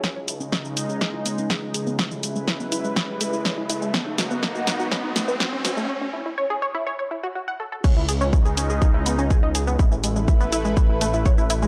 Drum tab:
CC |----------------|----------------|----------------|----------------|
HH |--x---x---x---x-|--x---x---x---x-|--x---x---x---x-|----------------|
SH |x-xxxxxxx-xxx-xx|xxxxxxxxx-xxx-xx|x-xxxxxxx-xxx-xx|----------------|
SD |o---o---o---o---|o---o---o---o---|o-o-o-o-o-o-o-o-|----------------|
BD |o---o---o---o---|o---o---o---o---|o---o---o---o---|----------------|

CC |x---------------|----------------|
HH |--x---x---x---x-|--x---x---x---x-|
SH |x-xxxxxxx-xxx-xx|xxxxxxxxx-xxxxxx|
SD |----------------|----------------|
BD |o---o---o---o---|o---o---o---o---|